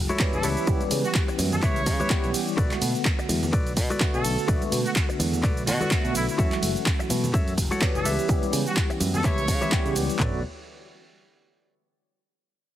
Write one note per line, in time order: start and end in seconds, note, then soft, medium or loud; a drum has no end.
0.00 0.17 E3 medium
0.00 0.17 F#3 medium
0.00 0.18 A3 medium
0.00 0.18 C#4 medium
0.00 0.18 F#4 loud
0.09 0.38 E4 loud
0.09 0.38 F#4 medium
0.09 0.39 A4 medium
0.09 0.39 C#5 loud
0.09 closed hi-hat soft
0.09 tambourine soft
0.09 high conga loud
0.09 shaker soft
0.19 0.65 E3 medium
0.19 0.65 G3 medium
0.19 0.65 B3 medium
0.19 0.65 C#4 medium
0.19 0.65 G4 loud
0.19 kick loud
0.19 clap loud
0.19 closed hi-hat medium
0.19 tambourine medium
0.19 shaker soft
0.33 0.42 F#1 medium
0.33 0.49 A4 medium
0.33 closed hi-hat soft
0.33 shaker soft
0.43 0.55 C#2 medium
0.43 0.83 E4 medium
0.43 0.83 G4 medium
0.43 0.83 B4 medium
0.43 0.83 C#5 loud
0.43 open hi-hat loud
0.43 ride medium
0.43 tambourine medium
0.43 shaker medium
0.57 closed hi-hat soft
0.57 tambourine soft
0.57 shaker soft
0.67 0.79 C#2 medium
0.67 2.08 E3 medium
0.67 2.08 G3 medium
0.67 2.08 B3 medium
0.67 2.08 C#4 medium
0.67 2.09 G4 medium
0.67 kick loud
0.67 closed hi-hat medium
0.67 tambourine medium
0.67 shaker soft
0.80 muted fingered electric bass stroke soft
0.80 closed hi-hat soft
0.80 high conga loud
0.80 shaker soft
0.91 1.02 C#3 medium
0.91 muted clean electric guitar stroke soft
0.91 open hi-hat loud
0.91 ride medium
0.91 tambourine medium
0.91 shaker medium
1.04 1.11 F#4 medium
1.04 closed hi-hat soft
1.04 tambourine soft
1.04 shaker soft
1.15 1.23 F#4 medium
1.15 kick loud
1.15 clap loud
1.15 closed hi-hat medium
1.15 shaker soft
1.28 muted clean electric guitar stroke loud
1.28 closed hi-hat soft
1.28 shaker soft
1.38 1.59 F#2 medium
1.38 muted clean electric guitar stroke soft
1.38 open hi-hat loud
1.38 ride medium
1.38 tambourine loud
1.38 high conga medium
1.38 shaker medium
1.52 1.60 A4 medium
1.52 closed hi-hat soft
1.52 tambourine soft
1.52 low conga medium
1.52 shaker soft
1.62 1.88 C#2 medium
1.62 1.81 E4 medium
1.62 1.81 G4 medium
1.62 1.81 B4 medium
1.62 2.30 C#5 medium
1.62 1.82 E5 loud
1.62 kick loud
1.62 clap soft
1.62 closed hi-hat medium
1.62 tambourine soft
1.62 shaker soft
1.76 closed hi-hat soft
1.76 tambourine soft
1.76 shaker soft
1.86 1.98 C#3 medium
1.86 kick medium
1.86 open hi-hat loud
1.86 ride medium
1.86 tambourine medium
1.86 low conga medium
1.86 shaker medium
2.00 2.29 E4 medium
2.00 2.29 G4 medium
2.00 2.29 B4 medium
2.00 2.29 C#5 loud
2.00 closed hi-hat soft
2.00 tambourine soft
2.00 high conga medium
2.00 low conga medium
2.00 shaker soft
2.10 2.55 E3 medium
2.10 2.55 G3 medium
2.10 2.55 B3 medium
2.10 2.55 C#4 medium
2.10 2.56 G4 loud
2.10 muted fingered electric bass stroke soft
2.10 kick loud
2.10 clap loud
2.10 closed hi-hat medium
2.10 shaker soft
2.24 2.32 B1 medium
2.24 closed hi-hat soft
2.24 shaker soft
2.34 open hi-hat loud
2.34 ride medium
2.34 tambourine medium
2.34 shaker medium
2.47 closed hi-hat soft
2.47 tambourine soft
2.47 shaker soft
2.57 2.69 B1 loud
2.57 3.98 D3 medium
2.57 3.98 A3 medium
2.57 3.99 B3 medium
2.57 2.71 F#4 loud
2.57 3.99 F#4 medium
2.57 2.71 A4 loud
2.57 2.71 B4 loud
2.57 2.71 D5 loud
2.57 kick loud
2.57 closed hi-hat medium
2.57 tambourine medium
2.57 shaker soft
2.71 muted fingered electric bass stroke soft
2.71 clap soft
2.71 closed hi-hat soft
2.71 high conga medium
2.71 shaker soft
2.81 2.93 B2 medium
2.81 muted clean electric guitar stroke soft
2.81 open hi-hat loud
2.81 ride medium
2.81 tambourine medium
2.81 shaker medium
2.95 closed hi-hat soft
2.95 tambourine soft
2.95 shaker soft
3.05 kick loud
3.05 clap loud
3.05 closed hi-hat medium
3.05 shaker soft
3.19 muted clean electric guitar stroke medium
3.19 closed hi-hat soft
3.19 shaker soft
3.29 3.49 E2 loud
3.29 muted clean electric guitar stroke soft
3.29 open hi-hat loud
3.29 ride medium
3.29 tambourine medium
3.29 high conga medium
3.29 shaker medium
3.42 closed hi-hat soft
3.42 tambourine soft
3.42 low conga medium
3.42 shaker soft
3.53 3.78 B1 medium
3.53 3.72 F#4 medium
3.53 3.72 A4 medium
3.53 3.72 B4 medium
3.53 3.72 D5 loud
3.53 kick loud
3.53 closed hi-hat medium
3.53 tambourine medium
3.53 shaker soft
3.66 closed hi-hat soft
3.66 tambourine soft
3.66 shaker soft
3.77 3.88 B2 loud
3.77 kick medium
3.77 open hi-hat loud
3.77 ride medium
3.77 tambourine loud
3.77 shaker medium
3.90 4.19 F#4 medium
3.90 4.19 A4 medium
3.90 4.19 B4 medium
3.90 4.20 D5 loud
3.90 closed hi-hat soft
3.90 tambourine soft
3.90 high conga medium
3.90 shaker soft
4.00 4.46 D3 medium
4.00 4.46 A3 medium
4.00 4.46 B3 medium
4.00 4.46 F#4 loud
4.00 kick loud
4.00 clap loud
4.00 closed hi-hat medium
4.00 shaker soft
4.14 4.23 B2 loud
4.14 4.48 A4 loud
4.14 closed hi-hat soft
4.14 shaker soft
4.24 4.36 B1 medium
4.24 open hi-hat medium
4.24 ride medium
4.24 tambourine medium
4.24 shaker medium
4.38 closed hi-hat soft
4.38 tambourine soft
4.38 shaker soft
4.47 4.60 B1 loud
4.47 5.89 D3 medium
4.47 5.89 A3 medium
4.47 5.89 B3 medium
4.47 4.62 F#4 loud
4.47 5.89 F#4 loud
4.47 4.62 A4 loud
4.47 4.62 B4 loud
4.47 4.62 D5 loud
4.47 kick loud
4.47 closed hi-hat medium
4.47 tambourine medium
4.47 shaker soft
4.62 muted fingered electric bass stroke soft
4.62 closed hi-hat soft
4.62 high conga medium
4.62 shaker soft
4.72 4.83 B2 medium
4.72 muted clean electric guitar stroke soft
4.72 open hi-hat loud
4.72 ride medium
4.72 tambourine medium
4.72 shaker medium
4.86 4.92 F#4 medium
4.86 closed hi-hat soft
4.86 tambourine soft
4.86 shaker soft
4.96 5.05 F#4 medium
4.96 kick loud
4.96 clap loud
4.96 closed hi-hat medium
4.96 shaker soft
5.09 muted clean electric guitar stroke medium
5.09 closed hi-hat soft
5.09 shaker soft
5.19 5.40 E2 loud
5.19 muted clean electric guitar stroke soft
5.19 open hi-hat loud
5.19 ride medium
5.19 tambourine medium
5.19 high conga medium
5.19 shaker medium
5.33 closed hi-hat soft
5.33 tambourine soft
5.33 low conga medium
5.33 shaker soft
5.43 5.69 B1 medium
5.43 5.62 F#4 medium
5.43 5.62 A4 medium
5.43 5.62 B4 medium
5.43 5.62 D5 loud
5.43 kick loud
5.43 clap soft
5.43 closed hi-hat medium
5.43 tambourine soft
5.43 shaker soft
5.57 closed hi-hat soft
5.57 tambourine soft
5.57 shaker soft
5.67 5.78 B2 medium
5.67 6.13 F#4 loud
5.67 open hi-hat loud
5.67 ride medium
5.67 tambourine medium
5.67 low conga medium
5.67 shaker medium
5.80 6.10 F#4 loud
5.80 6.10 A4 medium
5.80 6.10 B4 medium
5.80 6.10 D5 loud
5.80 closed hi-hat soft
5.80 tambourine soft
5.80 high conga medium
5.80 low conga medium
5.80 shaker soft
5.91 6.36 D3 medium
5.91 6.36 A3 medium
5.91 6.36 B3 medium
5.91 6.36 F#4 loud
5.91 muted fingered electric bass stroke soft
5.91 kick loud
5.91 clap loud
5.91 closed hi-hat medium
5.91 tambourine medium
5.91 shaker soft
6.04 6.13 B2 medium
6.04 closed hi-hat soft
6.04 shaker soft
6.15 6.26 B1 medium
6.15 6.24 E4 loud
6.15 open hi-hat medium
6.15 ride medium
6.15 tambourine medium
6.15 shaker medium
6.27 6.35 E4 medium
6.27 closed hi-hat soft
6.27 tambourine soft
6.27 shaker soft
6.38 6.50 F#2 loud
6.38 7.79 E3 medium
6.38 7.79 F#3 medium
6.38 7.80 A3 medium
6.38 7.80 C#4 medium
6.38 6.52 F#4 loud
6.38 7.80 F#4 loud
6.38 6.52 A4 loud
6.38 6.52 C#5 loud
6.38 6.52 E5 loud
6.38 kick loud
6.38 closed hi-hat medium
6.38 tambourine medium
6.38 shaker soft
6.52 muted fingered electric bass stroke soft
6.52 clap soft
6.52 closed hi-hat soft
6.52 high conga medium
6.52 shaker soft
6.62 6.74 F#1 medium
6.62 muted clean electric guitar stroke soft
6.62 open hi-hat loud
6.62 ride medium
6.62 tambourine medium
6.62 shaker medium
6.76 closed hi-hat soft
6.76 tambourine soft
6.76 shaker soft
6.86 kick loud
6.86 clap loud
6.86 closed hi-hat medium
6.86 shaker soft
6.99 muted clean electric guitar stroke medium
6.99 closed hi-hat soft
6.99 shaker soft
7.10 7.31 B2 loud
7.10 muted clean electric guitar stroke soft
7.10 open hi-hat medium
7.10 ride medium
7.10 tambourine loud
7.10 high conga medium
7.10 shaker medium
7.24 closed hi-hat soft
7.24 tambourine soft
7.24 low conga medium
7.24 shaker soft
7.34 7.59 F#2 medium
7.34 7.52 F#4 medium
7.34 7.53 A4 medium
7.34 7.53 C#5 medium
7.34 7.53 E5 loud
7.34 kick loud
7.34 closed hi-hat medium
7.34 tambourine soft
7.34 shaker soft
7.47 closed hi-hat soft
7.47 tambourine soft
7.47 shaker soft
7.58 7.69 F#1 loud
7.58 kick medium
7.58 open hi-hat loud
7.58 ride medium
7.58 tambourine loud
7.58 shaker medium
7.71 8.00 F#4 medium
7.71 8.00 A4 medium
7.71 8.00 C#5 medium
7.71 8.00 F#5 loud
7.71 closed hi-hat soft
7.71 tambourine soft
7.71 high conga medium
7.71 shaker soft
7.81 8.27 E3 medium
7.81 8.27 G3 medium
7.81 8.27 B3 medium
7.81 8.27 C#4 medium
7.81 8.27 G4 loud
7.81 kick loud
7.81 clap loud
7.81 closed hi-hat medium
7.81 shaker soft
7.95 8.03 F#1 medium
7.95 8.11 A4 loud
7.95 closed hi-hat soft
7.95 shaker soft
8.05 8.16 C#2 medium
8.05 8.45 G4 loud
8.05 8.45 B4 medium
8.05 8.45 C#5 medium
8.05 8.45 E5 loud
8.05 open hi-hat medium
8.05 ride medium
8.05 tambourine loud
8.05 shaker medium
8.18 closed hi-hat soft
8.18 tambourine soft
8.18 shaker soft
8.28 8.40 C#2 loud
8.28 9.70 E3 medium
8.28 9.70 G3 medium
8.28 9.70 B3 medium
8.28 9.70 C#4 medium
8.28 9.70 G4 loud
8.28 kick loud
8.28 closed hi-hat medium
8.28 tambourine medium
8.28 shaker soft
8.42 closed hi-hat soft
8.42 tambourine soft
8.42 high conga loud
8.42 shaker soft
8.53 8.64 C#3 medium
8.53 muted clean electric guitar stroke soft
8.53 open hi-hat loud
8.53 ride medium
8.53 tambourine loud
8.53 shaker medium
8.66 8.73 F#4 medium
8.66 closed hi-hat soft
8.66 tambourine soft
8.66 shaker soft
8.77 8.86 F#4 medium
8.77 kick loud
8.77 clap loud
8.77 closed hi-hat medium
8.77 shaker soft
8.90 muted clean electric guitar stroke medium
8.90 closed hi-hat soft
8.90 tambourine soft
8.90 shaker soft
9.00 9.21 F#2 loud
9.00 muted clean electric guitar stroke soft
9.00 open hi-hat medium
9.00 ride medium
9.00 tambourine loud
9.00 high conga medium
9.00 shaker medium
9.14 9.22 A4 loud
9.14 closed hi-hat soft
9.14 tambourine soft
9.14 low conga medium
9.14 shaker soft
9.24 9.50 C#2 medium
9.24 9.43 G4 medium
9.24 9.43 B4 medium
9.24 9.43 C#5 medium
9.24 9.92 C#5 loud
9.24 9.43 E5 loud
9.24 kick loud
9.24 clap soft
9.24 closed hi-hat medium
9.24 tambourine soft
9.24 shaker soft
9.38 closed hi-hat soft
9.38 tambourine soft
9.38 shaker soft
9.48 9.59 C#3 loud
9.48 kick medium
9.48 open hi-hat loud
9.48 ride medium
9.48 tambourine loud
9.48 low conga medium
9.48 shaker medium
9.61 9.90 G4 medium
9.61 9.91 B4 medium
9.61 9.91 C#5 medium
9.61 9.91 E5 loud
9.61 closed hi-hat soft
9.61 tambourine soft
9.61 high conga loud
9.61 low conga loud
9.61 shaker soft
9.72 10.17 E3 medium
9.72 10.17 G3 medium
9.72 10.17 B3 medium
9.72 10.17 C#4 medium
9.72 10.17 G4 loud
9.72 muted fingered electric bass stroke soft
9.72 kick loud
9.72 clap loud
9.72 closed hi-hat medium
9.72 shaker soft
9.85 9.94 C#3 medium
9.85 closed hi-hat soft
9.85 tambourine soft
9.85 shaker soft
9.95 10.07 C#2 medium
9.95 open hi-hat medium
9.95 ride medium
9.95 tambourine loud
9.95 shaker medium
10.09 closed hi-hat soft
10.09 tambourine soft
10.09 shaker soft
10.19 10.42 B1 medium
10.19 10.37 D3 medium
10.19 10.38 A3 medium
10.19 10.42 A4 medium
10.19 10.42 B4 medium
10.19 10.42 D5 medium
10.19 kick loud
10.19 clap medium
10.19 floor tom loud